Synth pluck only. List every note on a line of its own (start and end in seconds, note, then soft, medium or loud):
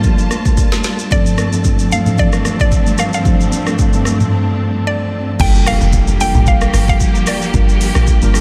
0.00 0.15 D5 medium
1.12 1.61 D5 loud
1.92 2.19 F5 loud
2.19 2.57 D5 loud
2.61 3.00 D5 loud
3.00 3.13 F5 loud
3.14 5.09 F5 medium
4.87 5.42 D5 medium
5.41 5.52 G5 loud
5.67 6.22 F5 loud
6.21 6.48 G5 loud
6.48 6.88 F5 loud
6.89 7.29 F5 loud
7.28 8.41 D5 medium